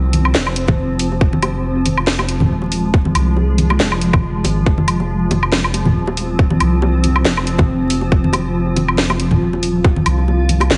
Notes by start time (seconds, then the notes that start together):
Already playing: C2 F3 C4
0.13 closed hi-hat, high conga
0.25 low woodblock
0.34 F1, snare, high bongo
0.47 low woodblock
0.56 closed hi-hat
0.68 kick, high bongo, high conga, low conga
0.99 open hi-hat
1.12 high bongo
1.21 F1 G#3, kick
1.33 high conga
1.42 closed hi-hat, high bongo, low woodblock
1.86 closed hi-hat, high bongo, high conga
1.97 low woodblock
2.07 snare
2.19 high bongo, low woodblock
2.29 closed hi-hat
2.40 high conga, low conga
2.50 D#1
2.62 high bongo
2.72 open hi-hat
2.94 kick, high bongo
3.05 high conga
3.15 C2, closed hi-hat, low woodblock
3.36 high bongo
3.58 closed hi-hat, high conga
3.70 high bongo, low woodblock
3.80 F1, snare
3.92 low woodblock
4.01 closed hi-hat
4.13 kick, high bongo, high conga, low conga, low woodblock
4.44 G#1, open hi-hat, high bongo
4.66 F1 C4, kick
4.78 high conga
4.88 closed hi-hat, low woodblock
5.00 high bongo
5.31 closed hi-hat, high bongo, high conga
5.43 low woodblock
5.52 snare
5.64 low woodblock
5.74 closed hi-hat, high bongo
5.86 high conga, low conga
5.96 D#1
6.07 high bongo
6.17 open hi-hat
6.39 kick
6.50 high bongo, high conga
6.60 C2, closed hi-hat, low woodblock
6.82 high bongo
7.04 closed hi-hat, high conga
7.16 low woodblock
7.25 F1, snare, high bongo
7.37 low woodblock
7.47 closed hi-hat
7.58 kick, high bongo, high conga, low conga
7.90 open hi-hat
8.01 high bongo
8.12 F1 F4, kick
8.24 high conga
8.33 closed hi-hat, high bongo, low woodblock
8.76 closed hi-hat, high bongo, high conga
8.88 low woodblock
8.98 snare
9.10 high bongo, low woodblock
9.20 closed hi-hat
9.31 high conga, low conga
9.41 D#1
9.53 high bongo
9.63 open hi-hat
9.84 kick, high bongo
9.96 high conga
10.06 C2, closed hi-hat, low woodblock
10.28 high bongo
10.49 closed hi-hat, high conga
10.60 closed hi-hat, high bongo, low woodblock
10.70 G#1, snare